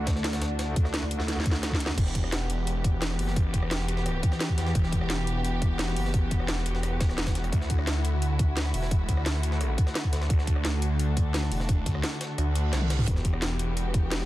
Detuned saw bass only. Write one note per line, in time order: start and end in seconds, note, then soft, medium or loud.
1.98 2.31 E1 loud
2.32 3.18 E1 loud
3.19 3.52 F#1 medium
3.54 3.70 E1 loud
3.71 4.22 E1 loud
4.58 4.74 E2 medium
4.75 5.08 E1 loud
5.10 5.95 E1 loud
5.97 6.30 F#1 medium
6.31 6.47 E1 medium
6.49 6.64 E1 loud
6.66 7.17 E1 loud
7.18 7.51 E1 medium
7.53 7.86 D2 loud
7.87 8.73 D2 loud
8.74 9.07 E1 medium
9.09 9.25 D2 loud
9.26 9.77 D2 loud
10.13 10.29 D2 medium
10.30 10.63 D2 loud
10.65 11.50 D2 loud
11.51 11.85 E1 loud
11.86 12.02 D2 loud
12.38 12.71 D2 loud
12.73 13.06 C2 medium
13.07 13.41 E1 loud
13.42 14.26 E1 loud